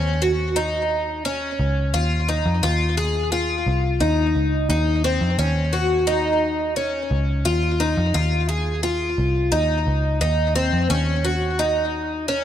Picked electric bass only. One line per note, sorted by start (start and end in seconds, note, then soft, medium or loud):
0.00 1.56 D#2 medium
1.60 1.92 C#2 medium
1.94 2.43 D#2 medium
2.46 2.62 F2 medium
2.63 3.63 D#2 medium
3.67 3.99 C2 medium
4.01 4.34 D#2 medium
4.35 4.68 C#2 medium
4.69 5.19 D#2 loud
5.21 5.38 F2 medium
5.38 7.07 D#2 medium
7.11 7.44 C#2 medium
7.45 7.95 D#2 medium
7.98 8.14 F2 medium
8.15 9.14 D#2 loud
9.18 9.51 C2 medium
9.52 9.85 D#2 medium
9.87 10.20 C#2 medium
10.21 10.71 D#2 medium
10.73 10.89 F2 medium
10.90 12.44 D#2 loud